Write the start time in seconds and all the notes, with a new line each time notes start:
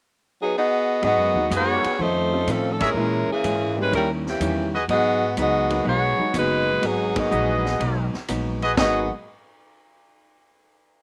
0.41 F#3 B3 D#4 G#4
0.57 B3 F#4 G#4 D#5
1.02 G#2 F#3 B3 D#4 F#4 G#4 D#5, kick, ride
1.18 F#2
1.34 D#2 F#3 A#3 B3 D#4
1.50 F#2 G#2 F#3 B3 D#4 F#4 G#4 B4 D#5, kick, hi-hat pedal, ride
1.54 B3 G#4 C#5
1.84 muted upright bass stroke, ride
1.99 F2 D#3 A3 C#4 D#4 F4 C5, kick
2.32 A3 C4 C#4 F4
2.47 F2 A2 D#3 F3 A3 C4 C#4 D#4 A4, kick, hi-hat pedal, ride
2.71 A4
2.80 G#3 E4 G#4 A#4 C#5 E5, kick, ride
2.84 C#4
2.94 A#2 E3 G#3 A#3 C#4 E4
3.28 E3 A#3 C#4 G#4, muted upright bass stroke
3.44 G#2 A#2 E3 G#3 C#4, kick, hi-hat pedal, ride
3.76 G3 G#3 A#3 C#4 E4 G4 B4
3.92 D#2 D#3 G3 C#4 E4 A#4, kick, ride
4.27 E3 A#3 C#4 G4, snare
4.40 E2 D#3 G3 C#4 E4, kick, hi-hat pedal, ride
4.73 F#4 G#4 B4 D#5
4.88 G#2 F#3 B3 D#4 F#4 G#4 D#5, kick, ride
5.37 C#2 G#2 F#3 B3 D#4 F#4 G#4 D#5, kick, hi-hat pedal, ride
5.70 F#3 A#3 B3 D#4, ride
5.84 B1 G#2 F#3 B3 D#4, kick
5.88 F#4 G#4 C#5
6.18 F#3 G#3 B3 D#4, muted upright bass stroke
6.33 F#1 G#2 F#3 G#3 B3 D#4 F#4 B4, kick, hi-hat pedal, ride
6.81 G#1 G#2 F#3 B3 D#4 G#4, kick, ride
7.15 F#3 A#3 B3 D#4 F#4 G#4 D#5, kick, ride
7.30 A#1 G#2 F#3 B3 D#4 F#4 G#4 B4 D#5, hi-hat pedal
7.66 snare
7.79 B1 G#2 F#3 B3 D#4, kick, ride
8.14 muted upright bass stroke, snare
8.28 A#1 G#2 F#3 B3 D#4, kick, hi-hat pedal, ride
8.62 F#4 G#4 B4 D#5, ride
8.77 G#1 G#2 F#3 G#3 A#3 B3 D#4 F#4 G#4 B4 D#5, kick, snare, splash